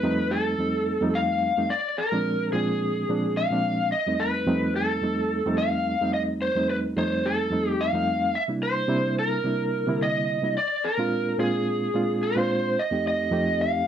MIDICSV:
0, 0, Header, 1, 3, 480
1, 0, Start_track
1, 0, Tempo, 554017
1, 1474, Time_signature, 4, 2, 24, 8
1, 12020, End_track
2, 0, Start_track
2, 0, Title_t, "Electric slide guitar"
2, 0, Program_c, 0, 29
2, 0, Note_on_c, 0, 71, 92
2, 271, Note_on_c, 0, 69, 85
2, 291, Note_off_c, 0, 71, 0
2, 998, Note_on_c, 0, 77, 98
2, 1015, Note_off_c, 0, 69, 0
2, 1475, Note_on_c, 0, 74, 86
2, 1491, Note_off_c, 0, 77, 0
2, 1717, Note_on_c, 0, 70, 90
2, 1722, Note_off_c, 0, 74, 0
2, 2185, Note_off_c, 0, 70, 0
2, 2189, Note_on_c, 0, 68, 73
2, 2921, Note_on_c, 0, 77, 99
2, 2933, Note_off_c, 0, 68, 0
2, 3364, Note_off_c, 0, 77, 0
2, 3397, Note_on_c, 0, 75, 85
2, 3637, Note_on_c, 0, 71, 85
2, 3643, Note_off_c, 0, 75, 0
2, 4121, Note_off_c, 0, 71, 0
2, 4125, Note_on_c, 0, 69, 79
2, 4834, Note_on_c, 0, 77, 101
2, 4861, Note_off_c, 0, 69, 0
2, 5313, Note_off_c, 0, 77, 0
2, 5317, Note_on_c, 0, 75, 93
2, 5381, Note_off_c, 0, 75, 0
2, 5560, Note_on_c, 0, 72, 84
2, 5801, Note_off_c, 0, 72, 0
2, 5805, Note_on_c, 0, 71, 96
2, 5868, Note_off_c, 0, 71, 0
2, 6046, Note_on_c, 0, 72, 78
2, 6287, Note_off_c, 0, 72, 0
2, 6287, Note_on_c, 0, 69, 77
2, 6668, Note_off_c, 0, 69, 0
2, 6668, Note_on_c, 0, 67, 77
2, 6763, Note_on_c, 0, 77, 93
2, 6774, Note_off_c, 0, 67, 0
2, 7237, Note_on_c, 0, 76, 85
2, 7252, Note_off_c, 0, 77, 0
2, 7301, Note_off_c, 0, 76, 0
2, 7477, Note_on_c, 0, 72, 92
2, 7921, Note_off_c, 0, 72, 0
2, 7961, Note_on_c, 0, 70, 81
2, 8685, Note_on_c, 0, 75, 75
2, 8697, Note_off_c, 0, 70, 0
2, 9158, Note_off_c, 0, 75, 0
2, 9161, Note_on_c, 0, 74, 93
2, 9396, Note_on_c, 0, 70, 90
2, 9403, Note_off_c, 0, 74, 0
2, 9874, Note_off_c, 0, 70, 0
2, 9877, Note_on_c, 0, 68, 69
2, 10595, Note_on_c, 0, 72, 73
2, 10614, Note_off_c, 0, 68, 0
2, 11085, Note_on_c, 0, 75, 91
2, 11086, Note_off_c, 0, 72, 0
2, 11318, Note_off_c, 0, 75, 0
2, 11328, Note_on_c, 0, 75, 105
2, 11795, Note_on_c, 0, 77, 95
2, 11812, Note_off_c, 0, 75, 0
2, 12020, Note_off_c, 0, 77, 0
2, 12020, End_track
3, 0, Start_track
3, 0, Title_t, "Reed electric piano"
3, 0, Program_c, 1, 4
3, 25, Note_on_c, 1, 41, 78
3, 29, Note_on_c, 1, 57, 74
3, 30, Note_on_c, 1, 55, 71
3, 33, Note_on_c, 1, 60, 71
3, 40, Note_on_c, 1, 63, 87
3, 465, Note_off_c, 1, 41, 0
3, 467, Note_off_c, 1, 55, 0
3, 467, Note_off_c, 1, 57, 0
3, 469, Note_off_c, 1, 60, 0
3, 472, Note_off_c, 1, 63, 0
3, 506, Note_on_c, 1, 41, 61
3, 509, Note_on_c, 1, 55, 55
3, 517, Note_on_c, 1, 57, 50
3, 517, Note_on_c, 1, 60, 63
3, 523, Note_on_c, 1, 63, 65
3, 840, Note_off_c, 1, 41, 0
3, 842, Note_off_c, 1, 55, 0
3, 846, Note_off_c, 1, 57, 0
3, 846, Note_off_c, 1, 60, 0
3, 849, Note_off_c, 1, 63, 0
3, 872, Note_on_c, 1, 41, 82
3, 874, Note_on_c, 1, 55, 74
3, 882, Note_on_c, 1, 57, 70
3, 883, Note_on_c, 1, 60, 69
3, 888, Note_on_c, 1, 63, 87
3, 1306, Note_off_c, 1, 41, 0
3, 1307, Note_off_c, 1, 55, 0
3, 1311, Note_off_c, 1, 57, 0
3, 1311, Note_off_c, 1, 60, 0
3, 1314, Note_off_c, 1, 63, 0
3, 1358, Note_on_c, 1, 41, 63
3, 1360, Note_on_c, 1, 55, 62
3, 1366, Note_on_c, 1, 57, 63
3, 1366, Note_on_c, 1, 60, 56
3, 1375, Note_on_c, 1, 63, 67
3, 1471, Note_off_c, 1, 41, 0
3, 1473, Note_off_c, 1, 55, 0
3, 1475, Note_off_c, 1, 60, 0
3, 1476, Note_off_c, 1, 57, 0
3, 1480, Note_off_c, 1, 63, 0
3, 1836, Note_on_c, 1, 46, 65
3, 1837, Note_on_c, 1, 53, 64
3, 1842, Note_on_c, 1, 56, 70
3, 1845, Note_on_c, 1, 60, 63
3, 1851, Note_on_c, 1, 62, 77
3, 2157, Note_off_c, 1, 46, 0
3, 2157, Note_off_c, 1, 53, 0
3, 2160, Note_off_c, 1, 56, 0
3, 2161, Note_off_c, 1, 60, 0
3, 2165, Note_off_c, 1, 62, 0
3, 2197, Note_on_c, 1, 46, 75
3, 2199, Note_on_c, 1, 53, 67
3, 2206, Note_on_c, 1, 56, 68
3, 2208, Note_on_c, 1, 60, 70
3, 2212, Note_on_c, 1, 62, 73
3, 2631, Note_off_c, 1, 46, 0
3, 2632, Note_off_c, 1, 53, 0
3, 2635, Note_off_c, 1, 56, 0
3, 2637, Note_off_c, 1, 60, 0
3, 2638, Note_off_c, 1, 62, 0
3, 2677, Note_on_c, 1, 46, 70
3, 2678, Note_on_c, 1, 53, 66
3, 2684, Note_on_c, 1, 56, 59
3, 2687, Note_on_c, 1, 60, 65
3, 2693, Note_on_c, 1, 62, 82
3, 3006, Note_off_c, 1, 46, 0
3, 3006, Note_off_c, 1, 53, 0
3, 3010, Note_off_c, 1, 56, 0
3, 3011, Note_off_c, 1, 60, 0
3, 3014, Note_off_c, 1, 62, 0
3, 3037, Note_on_c, 1, 46, 68
3, 3042, Note_on_c, 1, 53, 65
3, 3043, Note_on_c, 1, 56, 65
3, 3049, Note_on_c, 1, 60, 68
3, 3053, Note_on_c, 1, 62, 81
3, 3391, Note_off_c, 1, 46, 0
3, 3394, Note_off_c, 1, 53, 0
3, 3394, Note_off_c, 1, 56, 0
3, 3397, Note_off_c, 1, 60, 0
3, 3399, Note_off_c, 1, 62, 0
3, 3521, Note_on_c, 1, 41, 63
3, 3527, Note_on_c, 1, 55, 61
3, 3532, Note_on_c, 1, 57, 60
3, 3533, Note_on_c, 1, 60, 67
3, 3536, Note_on_c, 1, 63, 65
3, 3839, Note_off_c, 1, 41, 0
3, 3843, Note_off_c, 1, 55, 0
3, 3845, Note_off_c, 1, 57, 0
3, 3845, Note_off_c, 1, 60, 0
3, 3847, Note_off_c, 1, 63, 0
3, 3869, Note_on_c, 1, 41, 79
3, 3872, Note_on_c, 1, 55, 68
3, 3873, Note_on_c, 1, 57, 72
3, 3878, Note_on_c, 1, 60, 79
3, 3887, Note_on_c, 1, 63, 83
3, 4307, Note_off_c, 1, 41, 0
3, 4308, Note_off_c, 1, 55, 0
3, 4309, Note_off_c, 1, 57, 0
3, 4311, Note_off_c, 1, 60, 0
3, 4316, Note_off_c, 1, 63, 0
3, 4348, Note_on_c, 1, 41, 58
3, 4353, Note_on_c, 1, 55, 60
3, 4358, Note_on_c, 1, 57, 61
3, 4359, Note_on_c, 1, 60, 51
3, 4364, Note_on_c, 1, 63, 62
3, 4681, Note_off_c, 1, 41, 0
3, 4684, Note_off_c, 1, 55, 0
3, 4686, Note_off_c, 1, 57, 0
3, 4687, Note_off_c, 1, 60, 0
3, 4689, Note_off_c, 1, 63, 0
3, 4726, Note_on_c, 1, 41, 79
3, 4729, Note_on_c, 1, 55, 72
3, 4735, Note_on_c, 1, 57, 80
3, 4735, Note_on_c, 1, 60, 77
3, 4741, Note_on_c, 1, 63, 80
3, 5153, Note_off_c, 1, 41, 0
3, 5154, Note_off_c, 1, 55, 0
3, 5157, Note_off_c, 1, 57, 0
3, 5157, Note_off_c, 1, 60, 0
3, 5160, Note_off_c, 1, 63, 0
3, 5202, Note_on_c, 1, 41, 62
3, 5206, Note_on_c, 1, 57, 53
3, 5207, Note_on_c, 1, 55, 64
3, 5212, Note_on_c, 1, 60, 65
3, 5217, Note_on_c, 1, 63, 75
3, 5630, Note_off_c, 1, 41, 0
3, 5632, Note_off_c, 1, 57, 0
3, 5633, Note_off_c, 1, 55, 0
3, 5635, Note_off_c, 1, 60, 0
3, 5638, Note_off_c, 1, 63, 0
3, 5678, Note_on_c, 1, 41, 69
3, 5680, Note_on_c, 1, 55, 63
3, 5684, Note_on_c, 1, 57, 64
3, 5691, Note_on_c, 1, 60, 64
3, 5692, Note_on_c, 1, 63, 71
3, 5997, Note_off_c, 1, 41, 0
3, 5998, Note_off_c, 1, 55, 0
3, 6000, Note_off_c, 1, 57, 0
3, 6004, Note_off_c, 1, 60, 0
3, 6005, Note_off_c, 1, 63, 0
3, 6031, Note_on_c, 1, 41, 79
3, 6034, Note_on_c, 1, 55, 60
3, 6038, Note_on_c, 1, 57, 68
3, 6041, Note_on_c, 1, 60, 66
3, 6047, Note_on_c, 1, 63, 78
3, 6467, Note_off_c, 1, 41, 0
3, 6469, Note_off_c, 1, 55, 0
3, 6470, Note_off_c, 1, 57, 0
3, 6472, Note_off_c, 1, 60, 0
3, 6475, Note_off_c, 1, 63, 0
3, 6504, Note_on_c, 1, 41, 69
3, 6508, Note_on_c, 1, 55, 62
3, 6514, Note_on_c, 1, 57, 59
3, 6514, Note_on_c, 1, 60, 65
3, 6520, Note_on_c, 1, 63, 74
3, 6838, Note_off_c, 1, 41, 0
3, 6840, Note_off_c, 1, 55, 0
3, 6843, Note_off_c, 1, 57, 0
3, 6843, Note_off_c, 1, 60, 0
3, 6847, Note_off_c, 1, 63, 0
3, 6873, Note_on_c, 1, 41, 77
3, 6878, Note_on_c, 1, 55, 64
3, 6882, Note_on_c, 1, 57, 62
3, 6885, Note_on_c, 1, 60, 63
3, 6889, Note_on_c, 1, 63, 76
3, 7228, Note_off_c, 1, 41, 0
3, 7230, Note_off_c, 1, 55, 0
3, 7232, Note_off_c, 1, 57, 0
3, 7234, Note_off_c, 1, 60, 0
3, 7236, Note_off_c, 1, 63, 0
3, 7348, Note_on_c, 1, 48, 64
3, 7350, Note_on_c, 1, 55, 60
3, 7351, Note_on_c, 1, 58, 58
3, 7356, Note_on_c, 1, 62, 61
3, 7360, Note_on_c, 1, 64, 69
3, 7671, Note_off_c, 1, 48, 0
3, 7673, Note_off_c, 1, 55, 0
3, 7673, Note_off_c, 1, 58, 0
3, 7676, Note_off_c, 1, 62, 0
3, 7678, Note_off_c, 1, 64, 0
3, 7692, Note_on_c, 1, 48, 87
3, 7693, Note_on_c, 1, 55, 75
3, 7696, Note_on_c, 1, 58, 65
3, 7699, Note_on_c, 1, 62, 74
3, 7705, Note_on_c, 1, 64, 86
3, 8137, Note_off_c, 1, 48, 0
3, 8137, Note_off_c, 1, 55, 0
3, 8139, Note_off_c, 1, 58, 0
3, 8141, Note_off_c, 1, 62, 0
3, 8143, Note_off_c, 1, 64, 0
3, 8178, Note_on_c, 1, 48, 68
3, 8182, Note_on_c, 1, 55, 55
3, 8184, Note_on_c, 1, 58, 60
3, 8188, Note_on_c, 1, 62, 57
3, 8194, Note_on_c, 1, 64, 72
3, 8515, Note_off_c, 1, 48, 0
3, 8517, Note_off_c, 1, 55, 0
3, 8518, Note_off_c, 1, 58, 0
3, 8520, Note_off_c, 1, 62, 0
3, 8523, Note_off_c, 1, 64, 0
3, 8551, Note_on_c, 1, 48, 74
3, 8554, Note_on_c, 1, 55, 66
3, 8558, Note_on_c, 1, 58, 73
3, 8564, Note_on_c, 1, 50, 73
3, 8565, Note_on_c, 1, 64, 91
3, 8983, Note_off_c, 1, 48, 0
3, 8985, Note_off_c, 1, 55, 0
3, 8987, Note_off_c, 1, 58, 0
3, 8990, Note_off_c, 1, 50, 0
3, 8990, Note_off_c, 1, 64, 0
3, 9029, Note_on_c, 1, 48, 61
3, 9037, Note_on_c, 1, 55, 63
3, 9038, Note_on_c, 1, 58, 59
3, 9045, Note_on_c, 1, 62, 54
3, 9047, Note_on_c, 1, 64, 70
3, 9145, Note_off_c, 1, 48, 0
3, 9149, Note_off_c, 1, 55, 0
3, 9149, Note_off_c, 1, 58, 0
3, 9153, Note_off_c, 1, 62, 0
3, 9154, Note_off_c, 1, 64, 0
3, 9510, Note_on_c, 1, 46, 65
3, 9518, Note_on_c, 1, 56, 58
3, 9519, Note_on_c, 1, 60, 61
3, 9525, Note_on_c, 1, 62, 69
3, 9526, Note_on_c, 1, 65, 82
3, 9831, Note_off_c, 1, 46, 0
3, 9836, Note_off_c, 1, 56, 0
3, 9836, Note_off_c, 1, 60, 0
3, 9839, Note_off_c, 1, 62, 0
3, 9840, Note_off_c, 1, 65, 0
3, 9857, Note_on_c, 1, 46, 72
3, 9864, Note_on_c, 1, 56, 68
3, 9866, Note_on_c, 1, 60, 73
3, 9871, Note_on_c, 1, 62, 61
3, 9873, Note_on_c, 1, 65, 78
3, 10298, Note_off_c, 1, 46, 0
3, 10302, Note_off_c, 1, 56, 0
3, 10303, Note_off_c, 1, 60, 0
3, 10305, Note_off_c, 1, 62, 0
3, 10307, Note_off_c, 1, 65, 0
3, 10342, Note_on_c, 1, 46, 74
3, 10346, Note_on_c, 1, 56, 72
3, 10350, Note_on_c, 1, 60, 62
3, 10357, Note_on_c, 1, 62, 64
3, 10360, Note_on_c, 1, 65, 81
3, 10675, Note_off_c, 1, 46, 0
3, 10678, Note_off_c, 1, 56, 0
3, 10680, Note_off_c, 1, 60, 0
3, 10683, Note_off_c, 1, 62, 0
3, 10684, Note_off_c, 1, 65, 0
3, 10700, Note_on_c, 1, 46, 64
3, 10707, Note_on_c, 1, 56, 67
3, 10710, Note_on_c, 1, 60, 64
3, 10713, Note_on_c, 1, 62, 67
3, 10719, Note_on_c, 1, 65, 80
3, 11059, Note_off_c, 1, 46, 0
3, 11063, Note_off_c, 1, 56, 0
3, 11064, Note_off_c, 1, 60, 0
3, 11066, Note_off_c, 1, 62, 0
3, 11069, Note_off_c, 1, 65, 0
3, 11185, Note_on_c, 1, 41, 73
3, 11189, Note_on_c, 1, 57, 63
3, 11192, Note_on_c, 1, 60, 57
3, 11195, Note_on_c, 1, 63, 56
3, 11202, Note_on_c, 1, 67, 74
3, 11508, Note_off_c, 1, 41, 0
3, 11510, Note_off_c, 1, 57, 0
3, 11512, Note_off_c, 1, 60, 0
3, 11513, Note_off_c, 1, 63, 0
3, 11517, Note_off_c, 1, 67, 0
3, 11529, Note_on_c, 1, 41, 81
3, 11535, Note_on_c, 1, 57, 70
3, 11536, Note_on_c, 1, 60, 77
3, 11542, Note_on_c, 1, 63, 71
3, 11548, Note_on_c, 1, 67, 89
3, 11973, Note_off_c, 1, 41, 0
3, 11976, Note_off_c, 1, 57, 0
3, 11977, Note_off_c, 1, 60, 0
3, 11980, Note_off_c, 1, 63, 0
3, 11983, Note_off_c, 1, 67, 0
3, 12020, End_track
0, 0, End_of_file